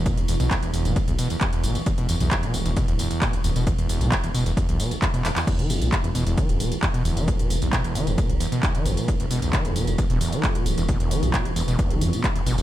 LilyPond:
<<
  \new Staff \with { instrumentName = "Synth drone" } { \clef bass \time 4/4 \key c \major \tempo 4 = 133 e1~ | e1~ | e1 | e1~ |
e1~ | e1~ | e1 | }
  \new Staff \with { instrumentName = "Acid bass" } { \clef bass \time 4/4 \key c \major b,16 e,,16 e,16 b,16 e,16 e,16 e,16 b,16 e,,16 e,16 b,16 e,16 e,16 e,16 b,16 e,,16 | e,16 b,16 e,16 e,16 e,16 b,16 e,,16 e,16 b,16 e,16 e,16 e,16 b,16 e,,16 e,16 b,16 | e,16 e,16 e,16 b,16 e,,16 e,16 b,16 e,16 e,16 e,16 b,16 e,,16 e,16 b,16 e,16 e,16 | e,16 e16 e,16 b,16 e,,16 e,16 b,16 e,16 e16 e,16 b,16 e,,16 e,16 b,16 e,16 e16 |
e,16 b,16 e,,16 e,16 b,16 e,16 e16 e,16 b,16 e,,16 e,16 b,16 e,16 e16 e,16 b,16 | e,,16 e,16 b,16 e,16 e16 e,16 b,16 e,,16 e,16 b,16 e,16 e16 e,16 b,16 e,,16 e,16 | b,16 e,16 e16 e,16 b,16 e,,16 e,16 b,16 e,16 e16 e,16 b,16 e,,16 e,16 b,16 e,16 | }
  \new Staff \with { instrumentName = "Detuned saw bass" } { \clef bass \time 4/4 \key c \major r16 e,,16 e,,16 b,,16 r16 e,,16 e,,16 e,,16 r16 b,,16 r4 g,,16 r16 | r16 e,,16 e,,16 b,,16 r16 e,,16 e,,16 e,,16 r16 d,,16 r4 d,,16 e,,16 | r16 e,,16 e,,16 b,,16 r16 e,,16 e,,16 e,,16 r16 b,,16 r8. e,,16 r8 | r16 e,,16 e,,16 b,,16 r16 e,,16 e,,16 e,,16 r16 d,,16 r4 d,,16 e,,16 |
r16 e,,16 e,,16 b,,16 r16 e,,16 e,,16 e,,16 r16 b,,16 r4 g,,16 r16 | r16 e,,16 e,,16 b,,16 r16 e,,16 e,,16 e,,16 r16 d,,16 r4 d,,16 e,,16 | r16 e,,16 e,,16 b,,16 r16 e,,16 e,,16 e,,16 r16 b,,16 e,16 r8. g,,16 e,,16 | }
  \new DrumStaff \with { instrumentName = "Drums" } \drummode { \time 4/4 <hh bd cymr tamb>16 <hh cymr>16 <hho cymr tamb>16 <hh cymr tamb>16 <hc hh bd cymr>16 <hh cymr>16 <hho cymr tamb>16 <hh cymr tamb>16 <hh bd cymr tamb>16 <hh cymr>16 <hho cymr tamb>16 <hh cymr tamb>16 <hc hh bd cymr tamb>16 <hh cymr>16 <hho cymr tamb>16 <hh cymr tamb>16 | <hh bd cymr tamb>16 <hh cymr>16 <hho cymr tamb>16 <hh cymr tamb>16 <hc hh bd cymr tamb>16 <hh cymr>16 <hho cymr tamb>16 <hh cymr tamb>16 <hh bd cymr tamb>16 <hh cymr>16 <hho cymr tamb>16 <hh cymr tamb>16 <hc hh bd cymr tamb>16 <hh cymr>16 <hho cymr tamb>16 <hh cymr tamb>16 | <hh bd cymr>16 <hh cymr>16 <hho cymr tamb>16 <hh cymr tamb>16 <hc hh bd cymr tamb>16 <hh cymr>16 <hho cymr tamb>16 <hh cymr tamb>16 <hh bd cymr tamb>16 <hh cymr>16 <hho cymr tamb>16 <hh cymr tamb>16 <hc hh bd cymr tamb>16 <hh cymr>16 <hc hho cymr tamb>16 <hc hh cymr tamb>16 | <cymc hh bd cymr tamb>16 <hh cymr>16 <hho cymr tamb>16 <hh cymr tamb>16 <hc hh bd cymr tamb>16 <hh cymr>16 <hho cymr tamb>16 <hh cymr tamb>16 <hh bd cymr tamb>16 <hh cymr>16 <hho cymr tamb>16 <hh cymr tamb>16 <hc hh bd cymr tamb>16 <hh cymr>16 <hho cymr tamb>16 <hh cymr tamb>16 |
<hh bd cymr tamb>16 <hh cymr>16 <hho cymr tamb>16 <hh cymr tamb>16 <hc hh bd cymr tamb>16 <hh cymr>16 <hho cymr tamb>16 <hh cymr tamb>16 <hh bd cymr tamb>16 <hh cymr>16 <hho cymr tamb>16 <hh cymr tamb>16 <hc hh bd cymr tamb>16 <hh cymr>16 <hho cymr tamb>16 <hh cymr tamb>16 | <hh bd cymr tamb>16 <hh cymr>16 <hho cymr tamb>16 <hh cymr tamb>16 <hc hh bd cymr tamb>16 <hh cymr>16 <hho cymr tamb>16 <hh cymr tamb>16 <hh bd cymr tamb>16 <hh cymr>16 <hho cymr tamb>16 <hh cymr tamb>16 <hc hh bd cymr tamb>16 <hh cymr>16 <hho cymr tamb>16 <hh cymr tamb>16 | <hh bd cymr tamb>16 <hh cymr>16 <hho cymr tamb>16 <hh cymr tamb>16 <hc hh bd cymr tamb>16 <hh cymr>16 <hho cymr tamb>16 <hh cymr tamb>16 <hh bd cymr>16 <hh cymr>16 <hho cymr tamb>16 <hh cymr tamb>16 <hc hh bd cymr tamb>16 <hh cymr>16 <hho cymr tamb>16 <hh cymr tamb>16 | }
>>